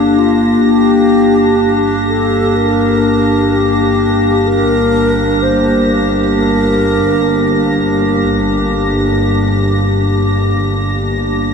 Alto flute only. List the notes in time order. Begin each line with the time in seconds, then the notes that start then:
Already playing: D4
0.19 F4
0.65 G4
2.08 A4
2.56 A#4
3.51 G4
4.47 A#4
5.43 C5
6.39 A#4